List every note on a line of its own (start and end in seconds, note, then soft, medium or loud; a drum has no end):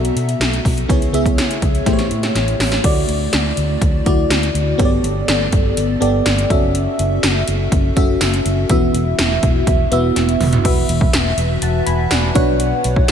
0.00 0.91 B2 medium
0.00 0.88 B3 medium
0.00 0.91 F#4 medium
0.00 0.91 A4 medium
0.00 0.91 E5 medium
0.00 0.91 F#5 medium
0.00 0.91 A#5 medium
0.05 closed hi-hat medium
0.16 0.33 B2 loud
0.16 closed hi-hat medium
0.29 closed hi-hat soft
0.40 0.58 B1 medium
0.40 snare loud
0.40 closed hi-hat medium
0.53 closed hi-hat soft
0.65 0.83 B1 medium
0.65 kick medium
0.65 open hi-hat medium
0.78 closed hi-hat medium
0.88 1.07 C#2 loud
0.88 1.58 C#3 medium
0.88 1.08 B3 medium
0.88 1.08 E4 medium
0.88 1.08 G#4 medium
0.88 1.09 C#5 medium
0.88 kick loud
0.88 closed hi-hat medium
1.02 closed hi-hat medium
1.13 1.39 C#2 medium
1.13 1.87 B3 medium
1.13 1.86 E4 medium
1.13 1.87 G#4 medium
1.13 1.87 E5 medium
1.13 closed hi-hat medium
1.26 kick medium
1.26 closed hi-hat medium
1.38 snare loud
1.38 closed hi-hat medium
1.51 closed hi-hat medium
1.62 1.80 C#2 medium
1.62 kick medium
1.62 closed hi-hat medium
1.75 closed hi-hat soft
1.86 2.04 A1 medium
1.86 2.56 A2 medium
1.86 2.65 A3 medium
1.86 2.65 E4 medium
1.86 2.65 G4 medium
1.86 1.93 C5 medium
1.86 kick medium
1.86 snare medium
1.86 closed hi-hat medium
1.93 2.68 C#5 loud
1.99 snare soft
1.99 closed hi-hat medium
2.11 2.29 A2 medium
2.11 closed hi-hat medium
2.23 snare medium
2.23 closed hi-hat medium
2.35 2.53 A1 medium
2.35 snare medium
2.35 closed hi-hat medium
2.48 closed hi-hat soft
2.59 2.77 A1 medium
2.59 snare medium
2.59 open hi-hat medium
2.72 snare medium
2.72 closed hi-hat soft
2.84 3.02 D2 loud
2.84 3.54 D3 medium
2.84 3.61 A3 medium
2.84 3.61 E4 medium
2.84 3.62 F#4 medium
2.84 3.62 D5 medium
2.84 kick loud
2.84 closed hi-hat medium
2.84 crash medium
3.09 3.26 D2 loud
3.09 closed hi-hat medium
3.33 3.51 D2 loud
3.33 snare loud
3.33 closed hi-hat medium
3.57 3.75 D2 medium
3.57 closed hi-hat medium
3.82 3.99 D2 medium
3.82 kick medium
3.82 closed hi-hat medium
4.06 4.24 D2 medium
4.06 4.64 A3 medium
4.06 4.64 E4 medium
4.06 4.64 F#4 medium
4.06 4.64 D5 medium
4.06 kick medium
4.06 closed hi-hat medium
4.30 4.48 D2 loud
4.30 snare loud
4.30 closed hi-hat medium
4.43 closed hi-hat soft
4.54 4.72 D2 loud
4.54 closed hi-hat medium
4.78 4.97 G1 loud
4.78 5.48 G2 medium
4.78 5.56 B3 medium
4.78 5.56 G4 medium
4.78 5.56 A4 medium
4.78 4.85 C#5 medium
4.78 kick loud
4.78 closed hi-hat medium
4.85 5.59 D5 medium
5.04 5.21 G1 loud
5.04 closed hi-hat medium
5.28 5.46 G1 loud
5.28 snare loud
5.28 closed hi-hat loud
5.52 5.70 G1 loud
5.52 kick medium
5.52 closed hi-hat medium
5.77 5.95 G1 loud
5.77 closed hi-hat medium
6.00 6.19 G1 medium
6.00 6.50 B3 medium
6.00 6.50 G4 medium
6.00 6.50 A4 medium
6.00 6.50 D5 medium
6.00 closed hi-hat medium
6.26 6.43 G1 loud
6.26 snare loud
6.26 closed hi-hat medium
6.38 closed hi-hat soft
6.50 6.85 F#1 loud
6.50 7.28 C#4 medium
6.50 7.28 F#4 medium
6.50 7.29 A4 medium
6.50 7.29 E5 medium
6.50 kick loud
6.50 closed hi-hat medium
6.75 closed hi-hat medium
6.99 7.17 F#1 loud
6.99 closed hi-hat medium
7.23 7.41 F#1 loud
7.23 snare loud
7.23 closed hi-hat loud
7.23 tambourine medium
7.48 7.65 F#1 loud
7.48 closed hi-hat medium
7.72 7.90 F#1 loud
7.72 kick loud
7.72 closed hi-hat medium
7.96 8.14 F#1 medium
7.96 8.54 C#4 medium
7.96 8.54 F#4 medium
7.96 8.55 A4 medium
7.96 8.55 E5 medium
7.96 kick medium
7.96 closed hi-hat medium
8.21 8.39 F#1 loud
8.21 snare loud
8.21 closed hi-hat medium
8.21 tambourine medium
8.34 closed hi-hat soft
8.45 8.63 F#1 loud
8.45 closed hi-hat medium
8.69 8.87 E1 loud
8.69 9.39 E3 medium
8.69 9.47 B3 medium
8.69 9.47 E4 medium
8.69 9.47 F#4 medium
8.69 9.47 E5 medium
8.69 kick loud
8.69 closed hi-hat medium
8.94 9.12 E1 loud
8.94 closed hi-hat medium
9.19 9.36 E1 loud
9.19 snare loud
9.19 closed hi-hat medium
9.19 tambourine medium
9.43 9.61 E1 loud
9.43 kick medium
9.43 closed hi-hat medium
9.67 9.85 E1 loud
9.67 kick loud
9.67 closed hi-hat medium
9.91 10.09 E1 loud
9.91 10.49 B3 medium
9.91 10.50 E4 medium
9.91 10.50 F#4 medium
9.91 10.50 E5 medium
9.91 closed hi-hat medium
10.16 10.34 E1 loud
10.16 snare medium
10.16 closed hi-hat medium
10.29 closed hi-hat soft
10.40 10.58 E1 loud
10.40 mid tom medium
10.40 open hi-hat medium
10.53 closed hi-hat medium
10.53 floor tom medium
10.65 10.82 E1 loud
10.65 11.34 E3 medium
10.65 11.42 F#4 medium
10.65 11.42 B4 medium
10.65 11.42 E5 loud
10.65 kick loud
10.65 closed hi-hat medium
10.65 crash loud
10.89 11.07 E1 loud
10.89 closed hi-hat medium
11.01 kick medium
11.13 11.31 E1 loud
11.13 snare loud
11.13 closed hi-hat loud
11.13 tambourine medium
11.37 11.55 E1 loud
11.37 closed hi-hat medium
11.62 11.80 E1 loud
11.62 11.86 F#5 medium
11.62 11.86 A5 medium
11.62 closed hi-hat loud
11.86 12.04 E1 loud
11.86 12.10 G#5 medium
11.86 12.10 B5 medium
11.86 closed hi-hat medium
12.11 12.29 E1 loud
12.11 12.58 D5 medium
12.11 12.35 F#5 medium
12.11 snare loud
12.11 closed hi-hat medium
12.11 tambourine medium
12.35 12.71 B1 loud
12.35 13.05 B2 medium
12.35 13.12 D4 medium
12.35 13.12 F#4 medium
12.35 13.12 B4 medium
12.35 13.12 C#5 medium
12.35 13.12 F#5 medium
12.35 kick loud
12.35 closed hi-hat medium
12.60 closed hi-hat medium
12.84 13.02 B1 loud
12.84 closed hi-hat medium
12.96 kick medium
13.08 snare loud